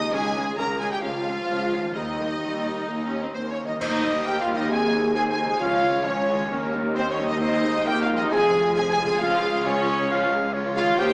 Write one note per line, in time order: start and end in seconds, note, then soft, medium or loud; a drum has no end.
0.00 1.88 C#3 medium
0.00 1.90 G#3 medium
0.00 0.11 D#4 medium
0.00 0.11 D#4 loud
0.00 1.92 F4 medium
0.00 0.13 C5 medium
0.00 0.12 D#5 loud
0.00 0.12 D#5 medium
0.00 0.13 D#5 loud
0.00 0.12 D#6 loud
0.08 1.94 C#5 medium
0.12 0.53 C#2 medium
0.12 0.53 C#2 loud
0.12 0.21 G#3 medium
0.12 0.57 G#3 medium
0.12 0.21 C#4 medium
0.12 0.58 G#4 loud
0.12 0.57 G#4 loud
0.12 0.58 G#4 medium
0.12 0.57 G#5 loud
0.35 0.43 G#3 medium
0.35 0.43 C#4 medium
0.58 0.98 C#2 medium
0.58 0.66 G#3 medium
0.58 0.80 A#3 medium
0.58 0.66 C#4 medium
0.58 0.80 A#4 medium
0.58 0.67 A#4 medium
0.58 0.81 A#4 loud
0.58 0.80 A#5 loud
0.80 0.91 G#3 medium
0.80 0.88 G#3 medium
0.80 0.88 C#4 medium
0.80 0.91 G#4 medium
0.80 0.85 G#4 medium
0.80 0.92 G#4 medium
0.80 0.91 G#5 loud
0.91 0.96 G3 medium
0.91 1.02 G4 medium
0.91 0.96 G4 medium
0.91 0.97 G4 medium
0.91 1.03 G5 medium
1.02 1.43 C#2 medium
1.02 1.93 F3 medium
1.02 1.12 G#3 medium
1.02 1.11 C#4 medium
1.02 1.94 F4 medium
1.02 1.93 F4 loud
1.02 1.93 F4 medium
1.02 1.93 F5 loud
1.27 1.35 G#3 medium
1.27 1.35 C#4 medium
1.48 1.89 C#2 medium
1.48 1.57 G#3 medium
1.48 1.57 C#4 medium
1.72 1.80 G#3 medium
1.72 1.80 C#4 medium
1.77 3.61 D#3 medium
1.81 3.66 G3 medium
1.86 4.68 G4 medium
1.90 3.32 D#3 medium
1.90 3.75 A#4 medium
1.90 3.32 D#5 medium
1.94 2.36 D#2 medium
1.94 2.37 D#2 medium
1.94 2.03 G3 medium
1.94 2.03 A#3 medium
1.94 3.58 D#4 medium
1.94 3.35 D#4 medium
1.94 3.32 D#4 medium
2.18 2.26 G3 medium
2.18 2.26 A#3 medium
2.42 2.83 D#2 medium
2.42 2.84 D#2 medium
2.42 2.86 G3 medium
2.88 3.30 D#2 medium
2.88 3.04 A#3 medium
3.06 3.20 C#4 medium
3.23 3.37 C4 medium
3.34 3.75 D#2 medium
3.34 3.76 D#2 medium
3.34 3.81 A#3 medium
3.34 3.42 C4 medium
3.34 3.41 C5 medium
3.34 3.49 C5 medium
3.34 3.50 C5 medium
3.49 3.57 C#4 medium
3.49 3.65 C#5 medium
3.49 3.66 C#5 medium
3.49 3.57 C#5 medium
3.63 4.51 D#3 medium
3.63 3.72 D#4 medium
3.63 3.80 D#5 medium
3.63 3.79 D#5 medium
3.67 4.66 G3 medium
3.72 4.60 D#4 medium
3.76 4.10 D#4 loud
3.76 4.70 A#4 medium
3.76 4.28 C5 loud
3.80 5.57 D#2 medium
3.80 4.03 A#3 medium
3.80 4.03 D#4 medium
3.80 4.25 D#5 loud
3.80 4.25 D#5 medium
3.80 4.25 D#5 loud
3.80 concert bass drum medium
3.80 crash medium
4.04 4.26 G3 medium
4.04 4.26 G4 medium
4.23 4.39 G4 loud
4.23 4.71 A#4 medium
4.23 4.40 G5 loud
4.23 4.40 G5 medium
4.23 4.41 G5 loud
4.27 4.49 A#3 medium
4.27 4.49 D#4 medium
4.40 4.55 F4 loud
4.40 4.46 F5 medium
4.40 4.56 F5 medium
4.48 4.71 G3 medium
4.48 4.71 G4 medium
4.52 5.53 D#3 medium
4.52 4.70 D#4 loud
4.52 4.70 D#5 medium
4.57 5.46 G#3 medium
4.57 4.71 D#5 loud
4.61 5.58 D#4 medium
4.66 5.17 G#4 medium
4.66 5.14 G#4 loud
4.66 5.60 C5 medium
4.70 4.92 D#3 medium
4.70 4.92 C4 medium
4.70 5.15 G#5 loud
4.70 5.03 G#5 loud
4.70 5.14 G#5 loud
4.93 5.16 G#3 medium
4.93 5.16 D#4 medium
5.14 5.38 D#3 medium
5.14 5.38 C4 medium
5.14 5.22 G#4 loud
5.14 5.60 C5 medium
5.14 5.22 G#5 loud
5.14 5.31 G#5 loud
5.14 5.22 G#5 loud
5.31 5.38 G#4 medium
5.31 5.44 G#5 medium
5.31 5.45 G#5 medium
5.31 5.45 G#5 loud
5.37 5.60 G#3 medium
5.37 5.61 D#4 medium
5.43 6.43 C#3 medium
5.43 5.60 G#4 loud
5.43 5.60 G#5 loud
5.43 5.61 G#5 loud
5.43 5.53 G#5 medium
5.47 6.46 G#3 medium
5.52 6.48 F4 medium
5.56 6.04 F4 loud
5.56 7.41 C#5 medium
5.56 6.05 F5 loud
5.60 6.49 C#2 medium
5.60 5.82 F3 medium
5.60 5.82 C#4 medium
5.60 6.49 C#5 loud
5.60 6.06 F5 medium
5.60 6.05 F5 loud
5.81 6.05 G#3 medium
5.81 6.05 F4 medium
6.04 6.28 F3 medium
6.04 6.72 C#4 loud
6.04 6.28 C#4 medium
6.04 6.71 C#5 medium
6.04 6.72 C#5 medium
6.04 6.72 C#5 loud
6.28 6.51 G#3 medium
6.28 6.50 F4 medium
6.33 7.22 D#3 medium
6.38 7.36 G3 medium
6.42 7.31 D#4 medium
6.46 7.41 A#4 medium
6.50 8.31 D#2 medium
6.50 8.32 D#2 loud
6.50 6.72 A#3 medium
6.50 6.72 C#4 medium
6.50 6.98 A#4 medium
6.74 6.96 G3 medium
6.74 6.96 D#4 medium
6.94 7.19 A#3 medium
6.94 7.02 C4 loud
6.94 7.19 C#4 medium
6.94 7.10 C5 loud
6.94 7.02 C5 medium
6.94 7.10 C5 loud
6.94 7.41 D#5 loud
7.11 7.19 C#4 medium
7.11 7.26 C#5 medium
7.11 7.18 C#5 medium
7.18 7.41 G3 medium
7.18 7.41 D#4 medium
7.23 8.24 D#3 medium
7.23 7.40 D#5 medium
7.23 7.33 D#5 medium
7.23 7.40 D#5 loud
7.28 8.16 G#3 medium
7.28 7.41 D#4 loud
7.32 8.29 D#4 medium
7.37 8.25 C5 medium
7.41 7.62 D#3 loud
7.41 7.63 C4 loud
7.41 7.86 D#4 loud
7.41 7.88 C5 loud
7.41 7.85 D#5 loud
7.41 7.86 D#5 loud
7.64 7.87 G#3 medium
7.64 7.87 D#4 medium
7.86 8.09 D#3 medium
7.86 8.09 C4 medium
7.86 8.02 G4 loud
7.86 8.31 A#4 medium
7.86 8.01 G5 loud
8.01 8.18 F4 loud
8.01 8.16 F5 loud
8.01 8.08 F5 medium
8.10 10.92 F3 medium
8.10 8.32 G#3 medium
8.10 8.32 D#4 medium
8.16 9.07 G#3 medium
8.16 8.33 D#4 loud
8.16 8.31 D#5 loud
8.16 8.22 D#5 loud
8.16 8.23 D#5 medium
8.22 9.18 C4 medium
8.26 9.21 C5 medium
8.31 9.21 F1 loud
8.31 9.21 F2 loud
8.31 8.52 F3 medium
8.31 8.53 C4 medium
8.31 8.76 G#4 loud
8.31 10.07 G#4 loud
8.31 8.74 G#5 loud
8.31 8.75 G#5 loud
8.54 8.76 G#3 medium
8.54 8.77 F4 medium
8.75 8.99 F3 medium
8.75 9.00 C4 medium
8.75 8.84 G#4 loud
8.75 8.82 G#5 loud
8.75 8.90 G#5 loud
8.90 8.97 G#4 loud
8.90 9.04 G#5 loud
8.90 8.98 G#5 loud
8.90 9.06 G#5 loud
9.00 10.92 C#3 medium
9.00 9.22 G#3 medium
9.00 9.21 F4 medium
9.05 10.95 G#3 medium
9.05 9.21 G#4 loud
9.05 9.20 G#5 loud
9.05 9.13 G#5 loud
9.12 10.97 F4 medium
9.17 10.99 C#5 medium
9.17 9.65 F5 loud
9.21 10.96 C#2 loud
9.21 9.43 F3 loud
9.21 9.65 F4 loud
9.21 9.43 F4 loud
9.21 9.65 F5 loud
9.44 9.66 G#3 medium
9.44 9.67 G#4 medium
9.65 9.88 F3 medium
9.65 10.31 C#4 loud
9.65 9.88 F4 medium
9.65 10.31 C#5 loud
9.65 10.33 C#5 loud
9.88 10.11 G#3 medium
9.88 10.11 G#4 medium
10.09 10.31 F3 medium
10.09 10.31 F4 medium
10.09 10.55 F5 loud
10.31 10.55 G#3 medium
10.31 10.54 G#4 medium
10.54 10.77 F3 medium
10.54 10.78 F4 medium
10.54 10.98 C#5 loud
10.75 11.00 G#3 medium
10.75 10.98 F4 loud
10.75 11.00 G#4 medium
10.75 10.97 F5 loud
10.75 10.86 F5 loud
10.75 10.98 F5 loud
10.82 11.13 D#3 medium
10.86 11.13 G3 medium
10.91 11.13 G4 medium
10.95 11.13 G4 loud
10.95 11.13 A#4 medium
10.95 11.13 C5 loud
10.95 11.13 G5 loud
10.99 11.13 D#2 loud
10.99 11.13 A#3 loud
10.99 11.13 D#4 loud
10.99 11.13 G5 loud